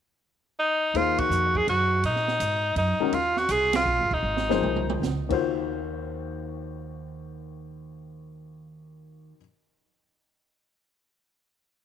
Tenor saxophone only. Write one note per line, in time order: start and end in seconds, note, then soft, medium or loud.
0.59 0.98 D#4 medium
0.96 1.21 F4 medium
1.19 1.58 F#4 medium
1.57 1.69 G#4 medium
1.69 2.02 F#4 medium
2.05 2.73 D#4 medium
2.78 3.15 D#4 medium
3.14 3.40 F4 medium
3.38 3.53 F#4 medium
3.51 3.77 G#4 medium
3.76 4.15 F4 medium
4.14 5.05 D#4 medium